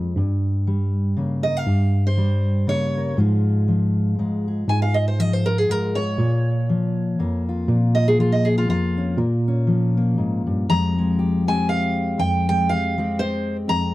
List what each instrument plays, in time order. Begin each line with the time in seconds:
Already playing: steel-string acoustic guitar F2 F3 G#3 C4
0.16 tine electric piano G2, steel-string acoustic guitar G2
0.67 steel-string acoustic guitar G3
1.17 steel-string acoustic guitar C#3 A#3
1.43 steel-string acoustic guitar A#4 D#5
1.57 steel-string acoustic guitar F5
1.67 tine electric piano G2, steel-string acoustic guitar G2
2.07 steel-string acoustic guitar C5
2.17 steel-string acoustic guitar G3
2.67 steel-string acoustic guitar C#3 A#3 C#5
2.98 steel-string acoustic guitar A#4
3.17 steel-string acoustic guitar G#2 F3 G#3 F4 G#4, tine electric piano G#2
3.68 steel-string acoustic guitar F3
4.19 steel-string acoustic guitar G#2 G#3
4.48 steel-string acoustic guitar G#4
4.68 tine electric piano G#2, steel-string acoustic guitar G#2 G#5
4.82 steel-string acoustic guitar F5
4.94 steel-string acoustic guitar D#5
5.08 steel-string acoustic guitar C5
5.19 steel-string acoustic guitar F3 D#5
5.33 steel-string acoustic guitar C5
5.46 steel-string acoustic guitar A#4
5.58 steel-string acoustic guitar G#4
5.69 steel-string acoustic guitar G#2 G#3 A#4
5.95 steel-string acoustic guitar G#4 C#5
6.18 tine electric piano A#2, steel-string acoustic guitar A#2
6.69 steel-string acoustic guitar F3
7.19 steel-string acoustic guitar F2 A#3
7.49 steel-string acoustic guitar F4
7.68 steel-string acoustic guitar A#2, tine electric piano A#2
7.95 steel-string acoustic guitar D#5
8.08 steel-string acoustic guitar G#4
8.18 steel-string acoustic guitar F3 F4
8.32 steel-string acoustic guitar D#5
8.45 steel-string acoustic guitar G#4
8.58 steel-string acoustic guitar F4
8.68 steel-string acoustic guitar F2 A#3 F4
8.97 steel-string acoustic guitar C#4
9.17 steel-string acoustic guitar A#2 A#3, tine electric piano A#2
9.48 steel-string acoustic guitar C#4
9.67 steel-string acoustic guitar F3
9.97 steel-string acoustic guitar A#3
10.18 steel-string acoustic guitar G#2
10.47 steel-string acoustic guitar G2
10.69 steel-string acoustic guitar F2 F3 G#3 C4 G4 A#5
10.98 steel-string acoustic guitar G#3
11.19 steel-string acoustic guitar G4
11.48 steel-string acoustic guitar G#3 C4 G4 G#5
11.69 steel-string acoustic guitar F5
12.18 steel-string acoustic guitar F2 G5
12.49 steel-string acoustic guitar G#3 G5
12.69 steel-string acoustic guitar G4 F5
12.98 steel-string acoustic guitar G#3 C4 G4
13.19 steel-string acoustic guitar C5
13.68 steel-string acoustic guitar F2 A#5